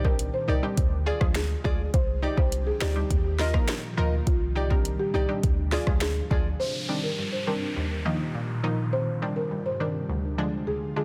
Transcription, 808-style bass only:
Already playing: C2
0.48 C2
0.77 D2
1.21 D2
1.65 D2
1.94 C2
2.38 C2
2.81 D2
3.10 D#2
3.98 D2
4.27 C2
5.14 C2
5.44 D2
5.87 D2
6.31 D2

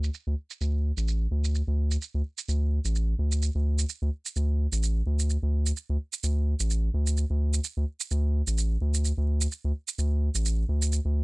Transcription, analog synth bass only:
0.27 D2
0.61 D2
0.97 A1
1.31 D2
1.68 D2
2.14 D2
2.48 D2
2.85 A1
3.19 D2
3.55 D2
4.02 D2
4.36 D2
4.72 A1
5.06 D2
5.43 D2
5.90 D2
6.24 D2
6.60 A1
6.94 D2
7.30 D2
7.77 D2
8.11 D2
8.47 A1
8.81 D2
9.18 D2
9.64 D2
9.98 D2
10.35 A1
10.69 D2
11.05 D2

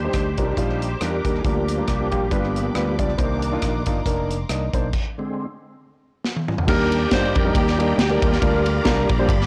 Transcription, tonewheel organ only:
Already playing: G4 C5
0.38 F3 G3 D4
1.02 D4 G4 A#4
1.39 G#4
1.44 F3 A#3 D4 G4
2.31 F3 B3 D4
3.18 D#3 A#3 D4
5.18 D3 G#3 C4
6.68 G4 D5 G5 A#5
8.42 F5
9.29 B5

